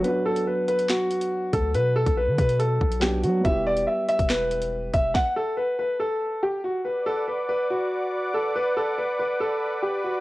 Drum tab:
HH |x--x--xx--xx--x-|x--x--xxx--x--x-|x--x--xx--xx--x-|----------------|
CP |--------x-------|------------x---|--------x-------|----------------|
SD |--------o-------|------------o---|--------o-------|o---------------|
BD |--------------o-|---o--o---o-----|o------o------o-|o---------------|

HH |----------------|----------------|
CP |----------------|----------------|
SD |----------------|----------------|
BD |----------------|----------------|